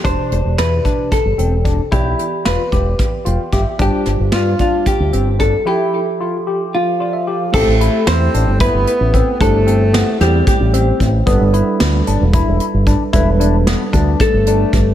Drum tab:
CC |-------|-------|-------|-------|
HH |xxxxxxx|xxxxxxx|xxxxxxx|-------|
SD |--o-o--|--o-o-o|-oo----|-------|
BD |o--oo-o|o--oo-o|o--oo-o|-------|

CC |x------|-------|-------|-------|
HH |-xxxxxx|xxxxxxx|xxxxxxx|xxxxxxx|
SD |--o----|--oo---|--o----|--o---o|
BD |o---o-o|o---o-o|o---o-o|o--oo-o|